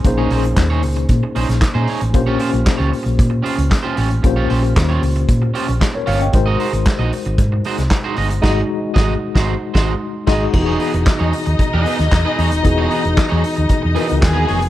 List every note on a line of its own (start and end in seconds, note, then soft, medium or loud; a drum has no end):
0.04 0.26 A#1 loud
0.04 2.10 A#2 medium
0.04 2.10 A#3 medium
0.04 2.10 C#4 medium
0.04 2.11 D#4 medium
0.04 2.11 G#4 medium
0.04 2.11 C5 medium
0.04 muted clean electric guitar stroke soft
0.04 kick loud
0.04 closed hi-hat medium
0.18 0.30 C#4 medium
0.18 0.30 D#4 medium
0.18 0.31 G#4 medium
0.18 0.32 C#5 medium
0.30 0.53 A#1 loud
0.30 0.43 C#4 medium
0.30 0.44 D#4 medium
0.30 0.44 G#4 medium
0.30 0.43 C5 medium
0.30 open hi-hat medium
0.44 muted clean electric guitar stroke soft
0.44 closed hi-hat soft
0.56 0.83 D#2 medium
0.56 muted clean electric guitar stroke soft
0.56 kick loud
0.56 snare loud
0.56 clap medium
0.56 closed hi-hat medium
0.70 0.82 C#4 medium
0.70 0.82 D#4 medium
0.70 0.83 G#4 medium
0.70 0.83 C#5 medium
0.83 1.05 C#2 medium
0.83 muted clean electric guitar stroke soft
0.83 open hi-hat medium
0.96 muted clean electric guitar stroke medium
0.96 closed hi-hat soft
1.09 1.20 A#2 medium
1.09 kick loud
1.09 closed hi-hat medium
1.23 muted clean electric guitar stroke soft
1.35 1.47 A#1 medium
1.35 1.51 C#4 medium
1.35 1.49 D#4 medium
1.35 1.48 G#4 medium
1.35 1.48 C5 medium
1.35 open hi-hat medium
1.49 1.60 A#1 medium
1.49 muted clean electric guitar stroke soft
1.49 snare soft
1.49 closed hi-hat soft
1.61 muted clean electric guitar stroke soft
1.61 kick loud
1.61 snare loud
1.61 clap medium
1.61 closed hi-hat medium
1.74 1.86 A#2 medium
1.74 1.87 C#4 medium
1.74 1.88 D#4 medium
1.74 1.88 G#4 medium
1.74 1.89 C5 medium
1.88 2.01 C#4 soft
1.88 2.01 D#4 medium
1.88 2.00 G#4 medium
1.88 2.01 C#5 medium
1.88 open hi-hat medium
2.01 2.14 A1 medium
2.01 muted clean electric guitar stroke soft
2.01 closed hi-hat medium
2.13 2.36 A#1 medium
2.13 4.19 A#2 medium
2.13 4.20 A#3 medium
2.13 4.20 C#4 medium
2.13 4.20 F4 medium
2.13 4.21 G4 medium
2.13 4.21 C5 medium
2.13 muted clean electric guitar stroke soft
2.13 kick loud
2.13 closed hi-hat medium
2.26 2.37 C#4 medium
2.26 2.39 F4 medium
2.26 2.39 G4 medium
2.26 2.40 C#5 medium
2.39 2.52 C#4 medium
2.39 2.52 F4 medium
2.39 2.51 G4 medium
2.39 2.51 C5 medium
2.39 open hi-hat medium
2.52 2.64 A#1 medium
2.52 muted clean electric guitar stroke soft
2.52 closed hi-hat soft
2.65 muted clean electric guitar stroke soft
2.65 kick loud
2.65 snare loud
2.65 clap medium
2.65 closed hi-hat medium
2.78 2.91 C#2 medium
2.78 2.90 C#4 medium
2.78 2.90 F4 medium
2.78 2.91 G4 medium
2.78 2.92 C#5 medium
2.91 muted clean electric guitar stroke soft
2.91 open hi-hat medium
3.03 3.17 A#1 medium
3.03 muted clean electric guitar stroke soft
3.03 closed hi-hat soft
3.19 3.41 A#2 medium
3.19 kick loud
3.19 closed hi-hat medium
3.30 muted clean electric guitar stroke medium
3.43 3.60 C#4 medium
3.43 3.56 F4 medium
3.43 3.56 G4 medium
3.43 3.55 C5 medium
3.43 open hi-hat medium
3.56 3.69 C#2 medium
3.56 muted clean electric guitar stroke soft
3.56 closed hi-hat medium
3.70 muted clean electric guitar stroke soft
3.70 kick loud
3.70 snare loud
3.70 clap medium
3.70 closed hi-hat medium
3.83 3.95 C#4 medium
3.83 3.96 F4 medium
3.83 3.96 G4 medium
3.83 3.98 C5 medium
3.96 4.19 A1 medium
3.96 4.09 C#4 medium
3.96 4.09 F4 medium
3.96 4.09 G4 medium
3.96 4.08 C#5 medium
3.96 open hi-hat medium
4.09 muted clean electric guitar stroke medium
4.09 closed hi-hat medium
4.22 4.46 A#1 loud
4.22 6.30 A#2 medium
4.22 6.30 A#3 medium
4.22 6.30 C#4 medium
4.22 6.30 F4 medium
4.22 6.30 G4 medium
4.22 muted clean electric guitar stroke soft
4.22 kick loud
4.22 closed hi-hat medium
4.27 5.54 C5 medium
4.36 4.47 C#4 medium
4.36 4.48 F4 medium
4.36 4.49 G4 medium
4.36 4.50 C#5 medium
4.49 4.72 A#1 medium
4.49 4.62 C#4 medium
4.49 4.62 F4 medium
4.49 4.62 G4 medium
4.49 4.62 C5 medium
4.49 open hi-hat medium
4.63 muted clean electric guitar stroke soft
4.63 closed hi-hat soft
4.76 4.98 D#2 loud
4.76 muted clean electric guitar stroke soft
4.76 kick loud
4.76 snare loud
4.76 clap medium
4.76 closed hi-hat medium
4.89 5.02 C#4 medium
4.89 5.02 F4 medium
4.89 5.03 G4 medium
4.89 5.04 C#5 medium
5.03 5.24 C#2 medium
5.03 muted clean electric guitar stroke soft
5.03 open hi-hat medium
5.16 muted clean electric guitar stroke soft
5.16 closed hi-hat soft
5.28 5.50 A#2 medium
5.28 kick loud
5.28 closed hi-hat medium
5.42 muted clean electric guitar stroke soft
5.54 5.70 C#4 medium
5.54 5.67 F4 medium
5.54 5.67 G4 medium
5.54 5.66 C5 medium
5.54 open hi-hat medium
5.67 5.79 A#1 medium
5.67 muted clean electric guitar stroke medium
5.67 closed hi-hat medium
5.80 muted clean electric guitar stroke soft
5.80 kick loud
5.80 snare loud
5.80 clap medium
5.80 closed hi-hat medium
5.94 6.08 A#4 soft
5.94 6.07 C#5 medium
5.94 muted clean electric guitar stroke soft
6.06 6.29 G1 loud
6.06 6.23 C#4 medium
6.06 6.20 F4 medium
6.06 6.20 G4 medium
6.06 6.20 C#5 medium
6.06 6.20 F5 medium
6.06 open hi-hat medium
6.20 6.46 D#5 medium
6.20 6.46 G5 medium
6.20 muted clean electric guitar stroke soft
6.20 closed hi-hat soft
6.32 6.55 G#1 medium
6.32 8.39 G#3 medium
6.32 8.39 D#4 medium
6.32 8.40 F#4 medium
6.32 8.40 A#4 medium
6.32 8.40 C5 medium
6.32 muted clean electric guitar stroke soft
6.32 kick loud
6.32 closed hi-hat medium
6.46 6.58 G#3 medium
6.46 6.58 D#4 medium
6.46 6.59 F#4 medium
6.46 6.60 D#5 medium
6.59 6.72 G#3 medium
6.59 6.72 D#4 medium
6.59 6.72 F#4 medium
6.59 6.72 C5 medium
6.59 open hi-hat medium
6.73 6.84 G#1 medium
6.73 muted clean electric guitar stroke soft
6.73 closed hi-hat soft
6.86 muted clean electric guitar stroke soft
6.86 kick loud
6.86 snare loud
6.86 clap medium
6.86 closed hi-hat medium
6.99 7.10 A#1 medium
6.99 7.12 G#3 medium
6.99 7.12 D#4 medium
6.99 7.12 F#4 medium
6.99 7.14 D#5 medium
7.13 muted clean electric guitar stroke soft
7.13 open hi-hat medium
7.25 7.37 G#1 medium
7.25 muted clean electric guitar stroke soft
7.25 closed hi-hat soft
7.38 7.60 G#2 medium
7.38 kick loud
7.38 closed hi-hat medium
7.52 muted clean electric guitar stroke medium
7.64 7.81 G#3 medium
7.64 7.77 D#4 medium
7.64 7.77 F#4 medium
7.64 7.76 C5 medium
7.64 open hi-hat medium
7.77 7.89 C2 medium
7.77 muted clean electric guitar stroke soft
7.77 snare soft
7.77 closed hi-hat soft
7.90 muted clean electric guitar stroke soft
7.90 kick loud
7.90 snare medium
7.90 clap medium
7.90 closed hi-hat medium
8.04 8.15 G#3 medium
8.04 8.16 D#4 medium
8.04 8.16 F#4 medium
8.04 8.18 C5 medium
8.16 8.39 G1 medium
8.16 8.29 G#3 medium
8.16 8.29 D#4 medium
8.16 8.29 F#4 medium
8.16 8.29 D#5 medium
8.16 open hi-hat medium
8.30 muted clean electric guitar stroke soft
8.30 closed hi-hat soft
8.42 8.61 G#1 medium
8.42 8.60 G#3 medium
8.42 8.62 G#3 medium
8.42 8.61 D#4 medium
8.42 8.61 F#4 medium
8.42 8.61 D#5 medium
8.42 8.62 D#5 medium
8.42 kick loud
8.42 snare loud
8.42 crash medium
8.94 9.14 G#1 medium
8.94 9.14 G#3 medium
8.94 9.14 D#4 medium
8.94 9.13 F#4 medium
8.94 9.13 D#5 medium
8.94 kick loud
8.94 snare loud
9.35 9.53 G#1 medium
9.35 9.53 G#3 medium
9.35 9.53 D#4 medium
9.35 9.54 F#4 medium
9.35 9.54 C5 medium
9.35 kick loud
9.35 snare loud
9.74 9.93 G#1 medium
9.74 9.93 G#3 medium
9.74 9.93 D#4 medium
9.74 9.93 F#4 medium
9.74 9.92 C5 medium
9.74 kick medium
9.74 snare loud
10.27 10.46 G#1 loud
10.27 10.45 G#3 medium
10.27 10.45 G#3 loud
10.27 10.45 D#4 loud
10.27 10.45 D#4 medium
10.27 10.46 F#4 medium
10.27 10.46 D#5 medium
10.27 10.46 D#5 loud
10.27 kick loud
10.27 snare medium
10.27 crash medium
10.53 10.76 E1 loud
10.53 12.60 E3 medium
10.53 12.60 B3 medium
10.53 12.61 D#4 medium
10.53 14.19 D#4 medium
10.53 12.61 F#4 medium
10.53 10.61 G4 medium
10.53 14.19 D#5 medium
10.53 muted clean electric guitar stroke soft
10.53 kick loud
10.53 crash medium
10.62 12.64 G#4 medium
10.66 10.78 B3 medium
10.66 10.78 D#4 medium
10.66 10.79 G#4 medium
10.66 10.80 C#5 medium
10.79 10.92 B3 medium
10.79 10.93 D#4 medium
10.79 10.93 G#4 medium
10.79 10.92 B4 medium
10.79 open hi-hat medium
10.93 11.05 E1 medium
10.93 muted clean electric guitar stroke soft
10.93 closed hi-hat soft
11.06 muted clean electric guitar stroke soft
11.06 kick loud
11.06 snare loud
11.06 clap medium
11.06 closed hi-hat medium
11.19 11.31 E2 medium
11.19 11.32 B3 medium
11.19 11.33 D#4 medium
11.19 11.33 G#4 medium
11.19 11.34 C#5 medium
11.33 muted clean electric guitar stroke soft
11.33 open hi-hat medium
11.46 11.57 D#2 medium
11.46 muted clean electric guitar stroke soft
11.46 closed hi-hat soft
11.59 muted fingered electric bass stroke soft
11.59 muted clean electric guitar stroke soft
11.59 kick loud
11.59 closed hi-hat medium
11.73 11.84 E2 loud
11.73 11.85 B3 medium
11.73 11.85 D#4 medium
11.73 11.86 G#4 medium
11.73 11.86 B4 loud
11.86 11.98 B3 medium
11.86 11.99 D#4 medium
11.86 11.98 G#4 medium
11.86 11.97 B4 medium
11.86 open hi-hat medium
11.99 12.10 D#2 loud
11.99 muted clean electric guitar stroke soft
11.99 snare soft
11.99 closed hi-hat soft
12.12 12.23 E2 medium
12.12 muted clean electric guitar stroke soft
12.12 kick loud
12.12 snare loud
12.12 clap medium
12.12 closed hi-hat medium
12.25 12.37 B3 medium
12.25 12.37 D#4 medium
12.25 12.38 G#4 medium
12.25 12.39 B4 medium
12.38 12.49 E2 medium
12.38 12.51 B3 medium
12.38 12.51 D#4 medium
12.38 12.51 G#4 medium
12.38 12.51 C#5 medium
12.38 open hi-hat medium
12.51 12.63 D#1 medium
12.51 muted clean electric guitar stroke soft
12.51 closed hi-hat medium
12.63 12.86 E1 medium
12.63 13.93 E3 medium
12.63 13.93 B3 medium
12.63 13.93 D#4 medium
12.63 13.94 F#4 medium
12.63 13.94 G#4 medium
12.63 muted clean electric guitar stroke soft
12.63 kick loud
12.63 closed hi-hat medium
12.78 12.88 B3 medium
12.78 12.89 D#4 medium
12.78 12.89 G#4 medium
12.78 12.91 C#5 loud
12.89 13.03 B3 medium
12.89 13.02 D#4 medium
12.89 13.02 G#4 medium
12.89 13.01 B4 medium
12.89 open hi-hat medium
13.03 13.15 E1 medium
13.03 muted clean electric guitar stroke soft
13.03 closed hi-hat soft
13.17 muted clean electric guitar stroke soft
13.17 kick loud
13.17 snare loud
13.17 clap medium
13.17 closed hi-hat medium
13.29 13.42 E2 medium
13.29 13.43 B3 medium
13.29 13.43 D#4 medium
13.29 13.43 G#4 medium
13.29 13.44 C#5 medium
13.44 muted clean electric guitar stroke soft
13.44 open hi-hat medium
13.56 13.68 D#2 medium
13.56 muted clean electric guitar stroke soft
13.56 closed hi-hat soft
13.69 kick loud
13.69 closed hi-hat medium
13.82 13.95 E2 loud
13.82 muted clean electric guitar stroke soft
13.95 14.69 E3 medium
13.95 14.11 B3 medium
13.95 14.69 B3 medium
13.95 14.08 D#4 medium
13.95 14.69 D#4 medium
13.95 14.69 F#4 medium
13.95 14.07 G#4 medium
13.95 14.69 A#4 medium
13.95 14.06 B4 medium
13.95 open hi-hat medium
14.08 14.21 C#2 medium
14.08 muted clean electric guitar stroke soft
14.08 closed hi-hat soft
14.21 14.44 D#2 medium
14.21 14.69 G#4 medium
14.21 14.69 G#5 loud
14.21 muted clean electric guitar stroke soft
14.21 kick loud
14.21 snare loud
14.21 clap medium
14.21 closed hi-hat medium
14.33 14.46 B3 medium
14.33 14.46 D#4 medium
14.33 14.46 G#4 medium
14.33 14.48 B4 medium
14.47 14.69 F1 loud
14.47 14.60 B3 medium
14.47 14.60 D#4 medium
14.47 14.59 G#4 medium
14.47 14.60 C#5 medium
14.47 open hi-hat medium
14.60 muted clean electric guitar stroke medium
14.60 closed hi-hat soft